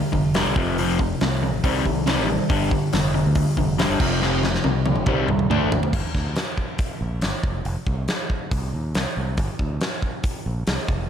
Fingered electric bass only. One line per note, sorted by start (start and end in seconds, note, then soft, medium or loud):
0.13 0.42 F1 medium
0.46 0.55 C2 medium
0.56 1.13 F1 loud
1.22 1.52 C2 medium
1.52 1.62 A1 medium
1.64 1.83 C2 loud
1.86 2.18 C2 medium
2.18 2.37 A1 medium
2.50 2.69 G1 loud
2.94 3.22 F1 medium
3.26 3.45 D2 medium
3.57 3.86 F1 loud
3.90 3.99 G1 medium
4.00 4.57 F1 loud
4.65 4.96 C2 medium
4.96 5.06 A1 loud
5.07 5.26 C2 loud
5.29 5.48 C2 loud
5.50 5.62 D2 loud
5.62 5.81 A1 medium
5.93 6.03 G1 loud
6.14 6.34 D2 medium
7.01 7.20 A#1 medium
7.22 7.32 G1 medium
7.43 7.63 F1 medium
7.65 7.75 F1 loud
7.87 8.06 C2 medium
8.51 8.71 C2 loud
8.74 8.93 D#2 medium
8.95 9.05 C2 medium
9.17 9.36 C2 medium
9.38 9.48 G1 loud
9.60 9.79 D2 medium
10.46 10.65 A#1 medium
10.67 10.77 C2 medium
10.89 11.08 F1 medium